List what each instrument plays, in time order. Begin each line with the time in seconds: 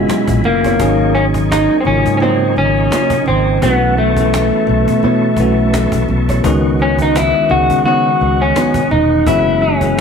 Already playing: tine electric piano F#3 B3 C#4 E4 F4 F#4 G#4, clean electric guitar G#3, tonewheel organ F#4 E5 G#5 B5
0.09 cajon slap, muted conga, high conga
0.28 fretless electric bass A#1, cajon bass, low conga
0.44 fretless electric bass F#1, clean electric guitar A#3, cajon slap, muted conga, low conga
0.64 hollow-body jazz guitar B3 E4 G#4 C#5, cajon bass
0.79 fretless electric bass G#1, tine electric piano F#3 A#3 C#4 D#4 G#4, tonewheel organ A#4 D#5 G#5 C#6, cajon bass
1.15 clean electric guitar C#4, cajon slap, muted conga, high conga
1.34 cajon bass
1.51 clean electric guitar D#4, cajon slap, muted conga, high conga
1.80 clean electric guitar C4
1.85 fretless electric bass G#1, tine electric piano C#3 F#3 A#3 D#4 F4, clean electric guitar C#4, muted conga, low conga
2.06 fretless electric bass G#2, cajon bass
2.17 clean electric guitar C#4, muted conga, high conga
2.21 hollow-body jazz guitar A#3 D#4 F#4 C#5, clean electric guitar C4, cajon slap
2.56 fretless electric bass G#1, clean electric guitar C#4, cajon slap, muted conga
2.76 cajon slap
2.91 hollow-body jazz guitar A#3 D#4 F#4 C#5, cajon slap, high conga
3.10 cajon bass, low conga
3.26 fretless electric bass G#1, clean electric guitar C4, cajon slap, muted conga, low conga
3.47 cajon slap
3.60 fretless electric bass B1, tine electric piano E3 A3 B3 C#4 F#4, clean electric guitar B3, tonewheel organ B4 E5 A5 C#6, cajon bass
3.97 clean electric guitar A3, cajon slap, high conga
4.17 tine electric piano E3 A3 B3 C#4 A4, cajon bass
4.33 cajon slap, muted conga, high conga
4.67 fretless electric bass B1, cajon slap, muted conga, low conga
4.88 fretless electric bass B2, cajon bass
5.03 fretless electric bass B2, hollow-body jazz guitar B3 E4 A4 C#5, cajon slap, muted conga, high conga
5.37 fretless electric bass B1, tine electric piano E3 A3 B3 C#4, cajon bass
5.41 tine electric piano F#4
5.58 cajon slap
5.73 cajon slap, muted conga, high conga
5.92 fretless electric bass B1, cajon bass, low conga
6.09 fretless electric bass B1, muted conga, low conga
6.29 hollow-body jazz guitar B3 E4 A4 C#5, cajon bass
6.44 fretless electric bass C#2, tine electric piano D#3 G#3 B3 C#4 F#4, tonewheel organ D#5 F#5, cajon bass
6.79 clean electric guitar C#4, cajon slap, high conga
6.98 clean electric guitar D#4, cajon bass
7.15 clean electric guitar E4, cajon slap, muted conga, high conga
7.50 fretless electric bass C#2, tine electric piano D#3 G#3 B3 C#4 G#4, clean electric guitar F#4, muted conga, low conga
7.70 fretless electric bass C#3, cajon bass
7.85 hollow-body jazz guitar B3 D#4 F#4 C#5, clean electric guitar F#4, cajon slap, high conga
8.20 fretless electric bass C#2, cajon slap
8.40 clean electric guitar C#4, cajon slap
8.56 hollow-body jazz guitar B3 D#4 F#4 C#5, cajon slap, muted conga, high conga
8.74 cajon bass, low conga
8.91 fretless electric bass E1, clean electric guitar D#4, cajon slap, low conga
9.12 cajon slap
9.26 fretless electric bass F#1, tine electric piano E3 G#3 B3 C#4 F#4, clean electric guitar E4, tonewheel organ G#4 E5 B5, cajon bass
9.62 clean electric guitar C#4, cajon slap, muted conga, high conga
9.81 tine electric piano E3 G#3 B3 C#4 G#4, cajon bass
9.98 muted conga, high conga